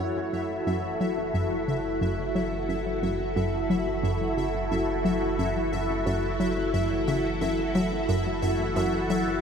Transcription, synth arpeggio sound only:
0.00 0.18 F#2 medium
0.33 0.61 F#2 medium
0.67 0.94 F#2 loud
1.00 1.19 F#3 medium
1.34 1.62 F#2 medium
1.68 1.79 C#3 medium
2.01 2.20 F#2 medium
2.35 2.54 F#3 medium
2.69 2.87 F#2 medium
3.03 3.30 F#2 medium
3.36 3.64 F#2 loud
3.70 3.88 F#3 medium
4.03 4.31 F#2 medium
4.37 4.48 C#3 medium
4.71 4.89 F#2 medium
5.05 5.23 F#3 medium
5.39 5.57 F#2 medium
5.73 6.00 F#2 medium
6.06 6.34 F#2 medium
6.40 6.58 F#3 medium
6.74 7.01 F#2 medium
7.08 7.19 C#3 medium
7.41 7.59 F#2 medium
7.75 7.93 F#3 medium
8.09 8.27 F#2 medium
8.43 8.70 F#2 medium
8.76 9.04 F#2 loud
9.10 9.28 F#3 medium

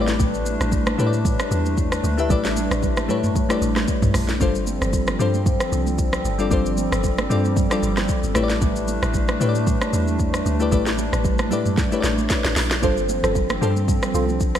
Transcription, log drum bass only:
0.00 0.18 A1 loud
0.20 0.58 A1 loud
0.61 0.96 A1 loud
0.98 1.37 A2 loud
1.51 2.00 E2 loud
2.04 2.28 D2 loud
2.30 2.68 A1 loud
2.71 3.11 A1 loud
3.09 3.47 A2 medium
3.62 3.86 A1 medium
4.02 4.14 A1 medium
4.14 4.39 A#1 loud
4.41 4.79 G1 loud
4.82 5.17 G1 loud
5.19 5.58 G2 loud
5.72 6.22 C2 loud
6.25 6.49 G1 medium
6.51 6.89 G1 loud
6.92 7.28 G1 loud
7.30 7.68 G2 loud
7.83 8.07 G1 loud
8.23 8.35 G1 medium
8.35 8.60 A1 loud
8.62 9.00 A1 loud
9.02 9.38 A1 loud
9.41 9.79 A2 loud
9.93 10.43 E2 loud
10.46 10.71 D2 medium
10.72 11.10 A1 loud
11.13 11.52 A1 loud
11.51 11.89 A2 loud
12.04 12.28 A1 medium
12.45 12.56 A1 medium
12.56 12.81 A#1 loud
12.83 13.21 G1 loud
13.23 13.59 G1 loud
13.62 14.00 G2 loud
14.14 14.59 C2 medium

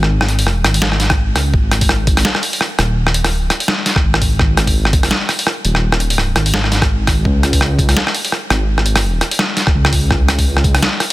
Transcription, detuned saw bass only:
0.00 0.63 G#1 loud
0.65 1.35 G#1 loud
1.36 1.53 C#2 medium
1.54 2.24 G#1 loud
2.79 3.29 D#1 medium
3.29 3.49 D1 medium
4.03 4.38 G#1 loud
4.39 5.10 G#1 loud
5.65 6.35 D#1 loud
6.36 7.06 G#1 loud
7.07 7.24 G#1 loud
7.25 7.95 C#2 loud
8.50 9.21 G#1 loud
9.75 10.10 C#2 loud
10.10 10.81 C#2 loud

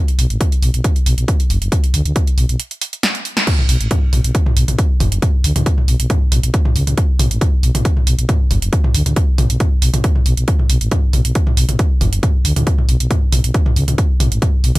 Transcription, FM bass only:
0.19 0.26 B1 medium
0.30 0.37 A1 medium
0.63 0.70 B1 medium
0.74 0.81 B1 medium
1.06 1.14 B1 medium
1.18 1.25 B1 medium
1.50 1.58 F#1 loud
1.62 1.68 F#1 medium
1.94 2.01 D2 loud
2.05 2.12 D2 medium
2.38 2.45 B1 loud
2.49 2.56 B1 medium
3.69 3.76 B1 medium
3.81 3.87 A1 medium
4.13 4.20 B1 medium
4.25 4.31 B1 medium
4.57 4.64 B1 loud
4.68 4.75 B1 medium
5.01 5.08 F#1 medium
5.12 5.19 F#1 medium
5.44 5.52 D2 medium
5.56 5.63 D2 medium
5.88 5.96 B1 medium
6.00 6.06 B1 medium
6.32 6.39 B1 medium
6.44 6.50 B1 medium
6.76 6.83 C#2 medium
6.87 6.94 C#2 medium
7.19 7.27 B1 medium
7.31 7.38 A1 medium
7.63 7.71 B1 loud
7.75 7.81 B1 medium
8.07 8.14 B1 medium
8.19 8.25 B1 medium
8.51 8.58 F#1 loud
8.62 8.69 F#1 medium
8.95 9.02 D2 medium
9.06 9.13 D2 medium
9.38 9.46 B1 medium
9.50 9.57 B1 medium
9.82 9.90 B1 medium
9.94 10.00 B1 medium
10.26 10.33 B1 loud
10.37 10.44 B1 medium
10.70 10.77 B1 medium
10.81 10.88 A1 medium
11.13 11.21 B1 loud
11.25 11.32 B1 medium
11.57 11.65 B1 loud
11.69 11.76 B1 medium
12.01 12.09 F#1 loud
12.13 12.19 F#1 medium
12.45 12.52 D2 loud
12.56 12.63 D2 medium
12.89 12.96 B1 loud
13.00 13.07 B1 medium
13.33 13.40 B1 loud
13.44 13.51 B1 medium
13.76 13.84 C#2 loud
13.88 13.95 C#2 medium
14.20 14.28 B1 medium
14.32 14.38 A1 medium
14.64 14.71 B1 loud
14.76 14.79 B1 medium

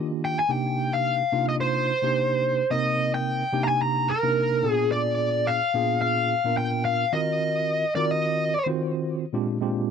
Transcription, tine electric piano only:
0.00 0.40 D#3 medium
0.00 0.40 A#3 medium
0.00 0.40 D4 medium
0.00 0.40 F4 medium
0.00 0.40 G4 medium
0.49 1.21 C3 medium
0.49 1.21 A#3 medium
0.49 1.21 D4 medium
0.49 1.21 D#4 medium
0.49 1.21 G4 medium
1.32 1.91 C3 medium
1.32 1.91 A#3 medium
1.32 1.91 D4 medium
1.32 1.92 D#4 medium
1.32 1.92 F4 medium
2.02 2.61 C3 medium
2.02 2.61 A#3 medium
2.02 2.61 D4 medium
2.02 2.62 D#4 medium
2.02 2.61 G4 medium
2.70 3.42 C3 medium
2.70 3.42 A#3 medium
2.70 3.42 C4 medium
2.70 3.43 D#4 medium
2.70 3.43 A#4 medium
3.52 4.12 C3 medium
3.52 4.12 A#3 medium
3.52 4.12 D4 medium
3.52 4.12 D#4 medium
3.52 4.12 G4 medium
4.23 4.64 C3 medium
4.23 4.64 A#3 medium
4.23 4.62 D4 medium
4.23 4.64 D#4 medium
4.23 4.64 A#4 medium
4.63 5.58 A#2 medium
4.63 5.58 B3 medium
4.63 5.58 D4 medium
4.63 5.58 F4 medium
4.63 5.59 G#4 medium
5.74 6.33 A#2 medium
5.74 6.33 B3 medium
5.74 6.33 D4 medium
5.74 6.34 F4 medium
5.74 6.34 G#4 medium
6.45 7.03 A#2 medium
6.45 7.03 B3 medium
6.45 7.03 D4 medium
6.45 7.03 F4 medium
6.45 7.04 A#4 medium
7.12 7.84 D#3 medium
7.12 7.84 C4 medium
7.12 7.84 F4 medium
7.12 7.84 F#4 medium
7.12 7.85 A#4 medium
7.96 8.54 D#3 medium
7.96 8.54 C4 medium
7.96 8.54 F4 medium
7.96 8.55 F#4 medium
7.96 8.55 A#4 medium
8.66 9.24 D#3 medium
8.66 9.24 C4 medium
8.66 9.24 F4 medium
8.66 9.24 F#4 medium
8.66 9.24 C5 medium
9.33 9.57 A#2 medium
9.33 9.57 G#3 medium
9.33 9.57 C4 medium
9.33 9.58 D4 medium
9.33 9.58 F4 medium
9.33 9.58 G4 medium
9.61 9.91 A#2 medium
9.61 9.91 G#3 medium
9.61 9.91 C4 medium
9.61 9.91 D4 medium
9.61 9.91 F4 medium
9.61 9.91 G4 medium

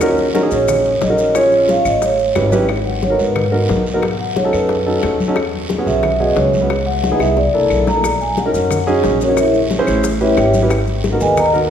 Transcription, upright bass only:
0.00 0.46 D#2 medium
0.51 0.98 A#1 medium
1.01 1.79 A#1 medium
1.85 2.32 A1 medium
2.36 3.13 G#1 medium
3.19 3.66 G#2 medium
3.69 4.47 B1 medium
4.53 5.00 F#2 medium
5.03 5.81 E2 medium
5.87 6.33 B1 medium
6.37 7.15 C#2 medium
7.20 7.51 C2 medium
7.54 7.70 C2 medium
7.70 8.48 B1 medium
8.54 9.01 F#2 medium
9.04 9.82 A#1 medium
9.87 10.34 A1 medium
10.37 11.15 G#1 medium
11.21 11.67 D#2 loud

